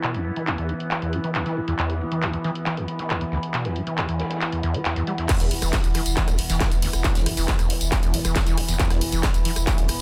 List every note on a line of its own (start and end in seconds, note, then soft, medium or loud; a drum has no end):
0.00 0.16 B2 medium
0.00 5.28 E3 medium
0.00 5.28 B3 medium
0.00 10.01 E4 medium
0.00 10.01 B4 medium
0.00 10.01 E5 medium
0.00 10.01 B5 medium
0.00 clap loud
0.00 closed hi-hat medium
0.14 0.27 E2 medium
0.14 snare soft
0.14 closed hi-hat medium
0.24 0.32 G2 medium
0.24 ride medium
0.36 0.49 E3 medium
0.36 closed hi-hat soft
0.47 0.56 D2 medium
0.47 clap loud
0.47 closed hi-hat medium
0.58 0.71 E2 medium
0.58 closed hi-hat soft
0.69 0.73 D2 medium
0.69 closed hi-hat soft
0.69 ride medium
0.80 closed hi-hat soft
0.80 ride soft
0.91 clap loud
0.91 closed hi-hat medium
1.02 1.15 E2 medium
1.02 closed hi-hat soft
1.13 1.19 G2 medium
1.13 closed hi-hat medium
1.13 ride medium
1.24 1.36 E3 medium
1.24 closed hi-hat soft
1.35 1.44 D2 medium
1.35 clap loud
1.35 closed hi-hat medium
1.46 1.58 E3 loud
1.46 closed hi-hat soft
1.57 1.60 D2 medium
1.57 ride medium
1.68 1.74 E2 loud
1.68 snare soft
1.68 closed hi-hat soft
1.79 2.02 E2 loud
1.79 clap loud
1.79 closed hi-hat medium
1.90 snare soft
1.90 closed hi-hat medium
2.01 2.04 D2 loud
2.01 ride medium
2.12 2.24 E3 medium
2.12 closed hi-hat soft
2.22 2.32 D2 medium
2.22 clap loud
2.22 closed hi-hat medium
2.33 2.37 E2 medium
2.33 closed hi-hat soft
2.44 2.50 E3 loud
2.44 closed hi-hat soft
2.44 ride medium
2.55 closed hi-hat soft
2.66 2.79 E3 loud
2.66 clap loud
2.66 closed hi-hat medium
2.66 ride medium
2.77 2.86 E2 medium
2.77 closed hi-hat soft
2.88 closed hi-hat medium
2.88 ride medium
2.99 3.12 E3 medium
2.99 snare soft
2.99 closed hi-hat soft
3.10 3.19 D2 medium
3.10 clap loud
3.10 closed hi-hat medium
3.21 3.25 E2 medium
3.21 closed hi-hat soft
3.32 3.38 D2 loud
3.32 snare soft
3.32 ride medium
3.43 closed hi-hat medium
3.54 3.66 B2 medium
3.54 clap loud
3.54 closed hi-hat medium
3.54 ride medium
3.65 3.77 E2 medium
3.65 snare soft
3.65 closed hi-hat medium
3.75 3.82 G2 medium
3.75 closed hi-hat soft
3.75 ride medium
3.87 3.99 E3 medium
3.87 closed hi-hat medium
3.98 4.07 D2 medium
3.98 clap loud
3.98 closed hi-hat medium
4.09 4.21 E2 medium
4.09 closed hi-hat medium
4.20 4.23 D2 medium
4.20 snare medium
4.20 closed hi-hat soft
4.20 ride medium
4.25 snare medium
4.25 ride medium
4.30 snare medium
4.30 closed hi-hat medium
4.30 ride medium
4.36 snare medium
4.36 ride medium
4.41 clap loud
4.41 closed hi-hat medium
4.52 4.62 E2 medium
4.52 closed hi-hat medium
4.63 4.76 E2 loud
4.63 closed hi-hat medium
4.63 ride medium
4.74 4.80 G3 medium
4.74 closed hi-hat medium
4.85 4.94 E2 medium
4.85 clap loud
4.85 closed hi-hat medium
4.85 ride medium
4.96 5.02 E2 loud
4.96 closed hi-hat medium
5.07 5.13 G3 medium
5.07 closed hi-hat soft
5.07 ride medium
5.18 5.27 E2 medium
5.18 snare soft
5.18 closed hi-hat medium
5.29 5.53 E2 loud
5.29 10.01 E3 medium
5.29 10.01 B3 medium
5.29 kick loud
5.29 cross-stick medium
5.29 clap loud
5.29 closed hi-hat medium
5.29 crash loud
5.29 ride medium
5.29 tambourine soft
5.40 5.50 E1 medium
5.40 snare soft
5.40 closed hi-hat medium
5.40 tambourine soft
5.51 5.61 E1 loud
5.51 5.55 D2 loud
5.51 open hi-hat loud
5.51 ride medium
5.62 5.73 E1 medium
5.62 5.74 E3 medium
5.62 cross-stick medium
5.62 closed hi-hat medium
5.62 tambourine medium
5.72 5.82 D2 medium
5.72 kick loud
5.72 snare loud
5.72 clap loud
5.72 closed hi-hat medium
5.72 ride medium
5.72 tambourine medium
5.84 5.95 E1 medium
5.84 5.88 E2 medium
5.84 closed hi-hat medium
5.84 tambourine soft
5.94 6.01 E3 loud
5.94 cross-stick medium
5.94 open hi-hat loud
5.94 ride medium
6.06 6.16 E1 medium
6.06 closed hi-hat medium
6.06 tambourine medium
6.17 6.29 E3 loud
6.17 kick loud
6.17 clap loud
6.17 closed hi-hat medium
6.17 ride loud
6.17 tambourine medium
6.28 6.38 E1 medium
6.28 6.37 E2 medium
6.28 cross-stick medium
6.28 closed hi-hat medium
6.28 tambourine soft
6.38 6.49 E1 medium
6.38 open hi-hat loud
6.38 ride medium
6.50 6.60 E1 medium
6.50 6.62 E3 medium
6.50 snare medium
6.50 closed hi-hat medium
6.50 tambourine medium
6.60 6.70 D2 medium
6.60 kick loud
6.60 cross-stick medium
6.60 snare loud
6.60 clap loud
6.60 closed hi-hat medium
6.60 ride medium
6.60 tambourine medium
6.71 6.82 E1 medium
6.71 6.75 E2 medium
6.71 closed hi-hat medium
6.71 tambourine soft
6.82 6.88 D2 loud
6.82 snare soft
6.82 open hi-hat loud
6.82 ride medium
6.93 7.04 E1 medium
6.93 cross-stick medium
6.93 closed hi-hat medium
6.93 tambourine medium
7.04 7.17 B2 medium
7.04 kick loud
7.04 clap loud
7.04 closed hi-hat medium
7.04 ride medium
7.04 tambourine medium
7.15 7.25 E1 medium
7.15 7.28 E2 medium
7.15 snare medium
7.15 closed hi-hat medium
7.15 tambourine soft
7.26 7.37 E1 loud
7.26 7.32 G2 medium
7.26 cross-stick medium
7.26 open hi-hat loud
7.26 ride medium
7.37 7.48 E1 medium
7.37 7.49 E3 medium
7.37 open hi-hat medium
7.37 tambourine medium
7.48 7.57 D2 medium
7.48 kick loud
7.48 snare loud
7.48 clap loud
7.48 closed hi-hat medium
7.48 ride medium
7.48 tambourine medium
7.59 7.70 E1 medium
7.59 7.71 E2 medium
7.59 cross-stick medium
7.59 closed hi-hat medium
7.59 tambourine soft
7.70 7.74 D2 medium
7.70 open hi-hat loud
7.70 ride medium
7.80 7.92 E1 medium
7.80 closed hi-hat medium
7.80 ride soft
7.80 tambourine medium
7.92 kick loud
7.92 cross-stick medium
7.92 clap loud
7.92 closed hi-hat medium
7.92 ride medium
7.92 tambourine soft
8.03 8.13 E1 medium
8.03 8.15 E2 medium
8.03 closed hi-hat medium
8.03 tambourine soft
8.14 8.24 E1 medium
8.14 8.20 G2 medium
8.14 open hi-hat loud
8.14 ride medium
8.25 8.35 E1 medium
8.25 8.37 E3 medium
8.25 cross-stick medium
8.25 closed hi-hat medium
8.25 tambourine medium
8.35 8.45 D2 medium
8.35 kick loud
8.35 snare loud
8.35 clap loud
8.35 closed hi-hat medium
8.35 ride medium
8.35 tambourine soft
8.47 8.57 E1 medium
8.47 8.59 E3 loud
8.47 closed hi-hat medium
8.47 tambourine soft
8.57 8.61 D2 medium
8.57 cross-stick medium
8.57 open hi-hat loud
8.57 ride medium
8.68 8.79 E1 medium
8.68 8.75 E2 loud
8.68 snare soft
8.68 closed hi-hat medium
8.68 tambourine medium
8.79 9.03 E2 loud
8.79 kick loud
8.79 clap loud
8.79 closed hi-hat medium
8.79 ride medium
8.79 tambourine medium
8.90 9.01 E1 medium
8.90 cross-stick medium
8.90 snare soft
8.90 closed hi-hat medium
8.90 tambourine soft
9.01 9.12 E1 loud
9.01 9.05 D2 loud
9.01 open hi-hat loud
9.01 ride medium
9.12 9.23 E1 medium
9.12 9.25 E3 medium
9.12 closed hi-hat medium
9.12 tambourine medium
9.23 9.32 D2 medium
9.23 kick loud
9.23 cross-stick medium
9.23 snare loud
9.23 clap loud
9.23 closed hi-hat medium
9.23 ride medium
9.23 tambourine medium
9.34 9.45 E1 medium
9.34 9.38 E2 medium
9.34 closed hi-hat medium
9.34 tambourine soft
9.45 9.51 E3 loud
9.45 open hi-hat loud
9.45 ride medium
9.56 9.67 E1 medium
9.56 cross-stick medium
9.56 closed hi-hat medium
9.56 tambourine medium
9.67 9.80 E3 loud
9.67 kick loud
9.67 clap loud
9.67 closed hi-hat medium
9.67 ride loud
9.67 tambourine medium
9.78 9.88 E1 medium
9.78 9.87 E2 medium
9.78 closed hi-hat medium
9.78 tambourine soft
9.88 9.99 E1 loud
9.88 cross-stick medium
9.88 open hi-hat loud
9.88 ride medium